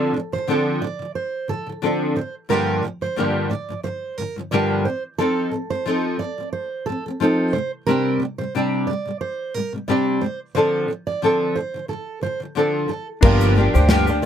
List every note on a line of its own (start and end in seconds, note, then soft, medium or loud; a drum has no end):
0.00 0.13 D3 medium
0.00 0.15 F3 medium
0.00 0.15 C4 medium
0.00 0.15 D4 medium
0.00 0.13 A4 medium
0.00 0.16 A4 medium
0.14 0.31 D3 medium
0.14 0.35 F3 medium
0.32 0.46 D3 soft
0.32 0.47 F3 medium
0.32 0.48 C5 medium
0.47 0.80 D3 medium
0.47 0.82 F3 medium
0.47 0.82 C4 medium
0.47 0.82 D4 medium
0.47 0.83 A4 medium
0.82 0.98 D3 medium
0.82 1.01 F3 medium
0.82 1.14 D5 medium
0.99 1.26 D3 soft
0.99 1.28 F3 soft
1.15 1.47 C5 medium
1.48 1.65 D3 soft
1.48 1.68 F3 medium
1.48 1.67 A4 medium
1.67 1.81 D3 soft
1.67 1.81 F3 soft
1.82 2.15 D3 medium
1.82 2.16 F3 medium
1.82 2.17 C4 medium
1.82 2.17 D4 medium
1.82 2.17 A4 medium
2.16 2.44 D3 medium
2.16 2.45 F3 medium
2.16 2.34 C5 medium
2.49 2.81 G2 medium
2.49 2.83 D3 medium
2.49 2.83 F3 medium
2.49 2.84 A#3 medium
2.49 2.84 D4 medium
2.49 2.84 G4 medium
2.49 2.82 A#4 medium
2.83 3.00 G2 medium
2.83 3.01 D3 medium
2.83 3.03 F3 medium
3.01 3.15 G2 soft
3.01 3.16 D3 soft
3.01 3.16 F3 soft
3.01 3.16 C5 medium
3.16 3.49 G2 medium
3.16 3.50 D3 medium
3.16 3.51 F3 medium
3.16 3.51 A#3 medium
3.16 3.51 D4 medium
3.16 3.51 G4 medium
3.50 3.67 G2 medium
3.50 3.69 D3 medium
3.50 3.70 F3 medium
3.50 3.83 D5 medium
3.69 3.82 G2 soft
3.69 3.84 D3 soft
3.69 3.85 F3 soft
3.83 4.11 G2 medium
3.83 4.12 D3 medium
3.83 4.13 F3 medium
3.83 4.18 C5 medium
4.18 4.35 G2 soft
4.18 4.37 D3 medium
4.18 4.38 F3 medium
4.18 4.35 A#4 medium
4.36 4.51 G2 soft
4.36 4.51 D3 soft
4.36 4.51 F3 medium
4.51 4.85 G2 medium
4.51 4.85 D3 medium
4.51 4.84 F3 medium
4.51 4.86 A#3 medium
4.51 4.86 D4 medium
4.51 4.86 G4 medium
4.51 4.69 D5 medium
4.85 5.13 F3 soft
4.85 5.14 C4 medium
4.85 5.03 C5 medium
5.18 5.50 F3 medium
5.18 5.52 C4 medium
5.18 5.53 D#4 medium
5.18 5.50 A4 medium
5.18 5.53 A4 medium
5.51 5.69 F3 medium
5.51 5.72 C4 medium
5.70 5.84 F3 soft
5.70 5.85 C4 medium
5.70 5.85 C5 medium
5.86 6.18 F3 medium
5.86 6.20 C4 medium
5.86 6.20 D#4 medium
5.86 6.20 A4 medium
6.19 6.37 F3 medium
6.19 6.39 C4 medium
6.19 6.51 D5 medium
6.38 6.64 F3 soft
6.38 6.65 C4 soft
6.53 6.85 C5 medium
6.86 7.05 F3 medium
6.86 7.06 C4 medium
6.86 7.04 A4 medium
7.06 7.19 F3 soft
7.06 7.20 C4 medium
7.20 7.53 F3 medium
7.20 7.54 C4 medium
7.20 7.54 D#4 medium
7.20 7.55 A4 medium
7.53 7.81 C3 medium
7.53 7.82 G3 medium
7.53 7.71 C5 medium
7.87 8.18 C3 medium
7.87 8.21 G3 medium
7.87 8.21 C4 medium
7.87 8.21 D4 medium
7.87 8.21 G4 medium
7.87 8.19 A#4 medium
8.20 8.38 C3 medium
8.20 8.40 G3 medium
8.38 8.53 C3 soft
8.38 8.54 G3 soft
8.38 8.53 C5 medium
8.55 8.86 C3 medium
8.55 8.88 G3 medium
8.55 8.88 C4 medium
8.55 8.88 D4 medium
8.55 8.89 G4 medium
8.87 9.04 C3 soft
8.87 9.07 G3 medium
8.87 9.19 D5 medium
9.05 9.32 C3 soft
9.05 9.33 G3 soft
9.21 9.54 C5 medium
9.54 9.71 C3 soft
9.54 9.74 G3 medium
9.54 9.72 A#4 medium
9.73 9.87 C3 soft
9.73 9.87 G3 soft
9.88 10.20 C3 medium
9.88 10.22 G3 medium
9.88 10.22 C4 medium
9.88 10.22 D4 medium
9.88 10.22 G4 medium
9.88 10.05 D5 medium
10.21 10.49 C3 medium
10.21 10.50 G3 medium
10.21 10.39 C5 medium
10.55 10.87 D3 medium
10.55 10.89 F3 medium
10.55 10.89 C4 medium
10.55 10.89 D4 medium
10.55 10.90 A4 medium
10.55 10.87 C5 medium
10.88 11.06 D3 medium
10.88 11.08 F3 medium
11.07 11.21 D3 soft
11.07 11.21 F3 soft
11.07 11.21 D5 medium
11.22 11.54 D3 medium
11.22 11.56 F3 medium
11.22 11.56 C4 medium
11.22 11.56 D4 medium
11.22 11.57 A4 medium
11.55 11.73 D3 medium
11.55 11.75 F3 medium
11.55 11.87 C5 medium
11.74 11.87 D3 soft
11.74 11.90 F3 soft
11.88 12.16 D3 soft
11.88 12.18 F3 medium
11.88 12.21 A4 medium
12.21 12.39 D3 soft
12.21 12.42 F3 medium
12.21 12.40 C5 medium
12.40 12.54 D3 soft
12.40 12.54 F3 medium
12.55 12.87 D3 medium
12.55 12.89 F3 medium
12.55 12.90 C4 medium
12.55 12.90 D4 medium
12.55 12.90 A4 medium
12.88 13.16 D3 soft
12.88 13.18 F3 medium
12.88 13.07 A4 medium
13.21 13.65 G1 loud
13.21 13.56 G2 medium
13.21 13.56 D3 medium
13.21 13.54 F3 medium
13.21 13.55 A#3 medium
13.21 14.26 D4 medium
13.21 13.56 D4 medium
13.21 14.26 G4 medium
13.21 13.57 G4 loud
13.21 13.54 A#4 loud
13.21 14.26 A#4 medium
13.21 kick loud
13.21 crash medium
13.25 14.26 F5 medium
13.41 shaker medium
13.55 13.74 F3 medium
13.55 13.75 A#3 medium
13.55 13.74 D4 medium
13.55 13.73 G4 medium
13.74 14.26 D2 medium
13.74 13.88 F3 soft
13.74 13.88 A#3 soft
13.74 13.89 D4 medium
13.74 13.89 G4 medium
13.74 13.89 C5 medium
13.74 shaker soft
13.89 14.07 G2 medium
13.89 14.08 D3 medium
13.89 14.08 F3 medium
13.89 14.08 A#3 medium
13.89 14.07 D4 medium
13.89 14.06 G4 medium
13.89 snare loud
13.89 shaker medium
14.07 14.21 F3 medium
14.07 14.22 A#3 medium
14.07 14.23 D4 medium
14.07 14.22 G4 medium
14.07 shaker soft
14.22 14.26 F3 medium